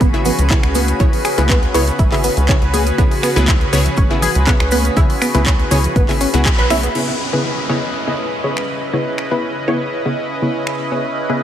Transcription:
Already playing: C#3 C#4 F#4 G#4 B4 B5
0.01 G#1 B3, kick, closed hi-hat, high conga, cabasa
0.14 C#3 B3 E4 G#4 E5, closed hi-hat
0.25 B3, open hi-hat, low conga, cabasa
0.39 C#2, closed hi-hat, cabasa, high woodblock
0.50 C#3 B3 E4 G#4 C#5, kick, clap, closed hi-hat, cabasa
0.63 C#2, finger snap, closed hi-hat
0.75 B3, open hi-hat, high conga, cabasa
0.88 closed hi-hat, cabasa
1.00 C#2 C#3 B3 C#4 E4 G#4 C#5, kick, closed hi-hat, low conga, cabasa
1.13 open hi-hat
1.25 G#4, finger snap, open hi-hat, cabasa
1.38 C#2 C#3 B3 E4 G#4 B4, closed hi-hat, high conga, cabasa
1.49 B3, kick, clap, closed hi-hat, cabasa
1.62 closed hi-hat, high woodblock
1.74 C#2 C#3 B3 E4 G#4 C#5, open hi-hat, cabasa
1.88 closed hi-hat, cabasa
1.98 G#1 E4, kick, closed hi-hat, high conga, cabasa
2.12 C#3 B3 E4 G#4 E5, clap, open hi-hat
2.24 B3, open hi-hat, cabasa
2.37 C#2, closed hi-hat, cabasa
2.49 C#3 B3 C#4 E4 G#4 C#5, kick, clap, closed hi-hat, cabasa
2.62 C#2, closed hi-hat
2.73 G#4, open hi-hat, high conga, cabasa
2.87 closed hi-hat, cabasa
2.98 C#2 C#3 B3 E4 G#4 C#5, kick, closed hi-hat, low conga, cabasa
3.11 open hi-hat, high woodblock
3.23 B3, finger snap, open hi-hat, cabasa
3.36 C#2 C#3 B3 E4 G#4 B4, closed hi-hat, high conga, cabasa
3.48 E4, kick, clap, closed hi-hat, cabasa
3.60 closed hi-hat, high woodblock
3.73 C#2 C#3 B3 E4 G#4 C#5, open hi-hat, cabasa
3.86 closed hi-hat, low conga, cabasa
3.96 G#1 C#4, kick, closed hi-hat, high conga, cabasa
4.11 C#3 B3 E4 G#4 E5, closed hi-hat
4.22 G#4, open hi-hat, low conga, cabasa
4.34 C#2, closed hi-hat, cabasa, high woodblock
4.47 C#3 B3 E4 G#4 C#5, kick, clap, closed hi-hat, cabasa
4.60 C#2, finger snap, closed hi-hat
4.71 B3, open hi-hat, high conga, cabasa
4.85 closed hi-hat, cabasa
4.97 C#2 C#3 B3 E4 G#4 C#5, kick, closed hi-hat, low conga, cabasa
5.10 open hi-hat, high woodblock
5.22 B3, finger snap, open hi-hat, cabasa
5.34 C#2 C#3 B3 E4 G#4 B4, closed hi-hat, high conga, cabasa
5.46 C#4, kick, clap, closed hi-hat, cabasa
5.59 closed hi-hat, high woodblock
5.71 C#2 C#3 B3 E4 G#4 C#5, open hi-hat, cabasa
5.84 closed hi-hat, low conga, cabasa
5.95 G#1 B3, kick, closed hi-hat, high conga, cabasa
6.09 C#3 B3 E4 G#4 E5, clap, open hi-hat
6.21 C#4, open hi-hat, cabasa
6.34 C#2 C#3 B3 E4 G#4 F#5, closed hi-hat, cabasa
6.45 G#4, kick, clap, closed hi-hat, cabasa
6.59 B1 B4, closed hi-hat
6.70 C#3 B3 E4 G#4 C#5, finger snap, open hi-hat, high conga, cabasa
6.83 B3, closed hi-hat, cabasa
6.95 C#3 B3 C#4 E4 G#4 B4 C#5 D#5 B5, crash, downlifter
7.33 C#3 B3 E4 G#4 B4
7.69 C#3 B3 E4 G#4 C#5
8.07 C#3 B3 E4 G#4 D#5
8.44 C#3 B3 E4 G#4 C#5
8.57 finger snap
8.93 C#3 B3 E4 G#4 C#5
9.18 finger snap
9.31 C#3 B3 E4 G#4 B4
9.68 C#3 B3 E4 G#4 C#5
10.06 C#3 B3 E4 G#4 D#5
10.42 C#3 B3 E4 G#4 C#5
10.67 finger snap
10.92 C#3 B3 E4 G#4 C#5
11.30 C#3 B3 E4 G#4 B4

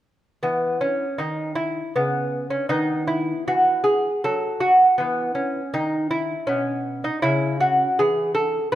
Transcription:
0.43 E3 B3
0.81 C#4
1.18 D#3 D#4
1.55 E4
1.96 C#3 B3
2.50 C#4
2.69 D#3 B3 D#4
3.07 E4
3.48 E3 F#4
3.84 G#4
4.24 F#3 A4
4.60 F#4
4.98 E3 B3
5.35 C#4
5.74 D#3 D#4
6.11 E4
6.47 B2 C#4
7.04 D#4
7.22 C#3 C#4 E4
7.60 F#4
7.99 E3 G#4
8.35 A4

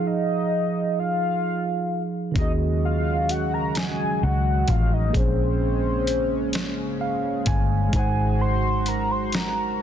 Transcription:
Already playing: F3 D#4 G#4 F5
0.07 D#5
0.99 F5
2.31 C#3 D#3 F#3 C#4 F#4
2.35 D#2 G#3 F#4 G#4 D#5, kick, closed hi-hat
2.42 D#5
2.85 F5
3.29 F#5, closed hi-hat
3.54 A#5
3.75 G#5, snare, closed hi-hat
4.23 C#2 F#5
4.68 A1 F5, kick, closed hi-hat
4.93 D#5
5.10 A#3 G#4
5.14 A#1 C#3 C#4 C5, kick, closed hi-hat
5.20 C#4
6.07 closed hi-hat
6.53 snare, closed hi-hat
7.01 F5
7.46 G1 G#5, kick, closed hi-hat
7.89 G#3 D#4, closed hi-hat
7.93 G#1 F#4 C5 G#5, kick
7.99 F#5
8.41 C6
8.86 A#5, closed hi-hat
9.11 C6
9.32 A#5, snare, closed hi-hat

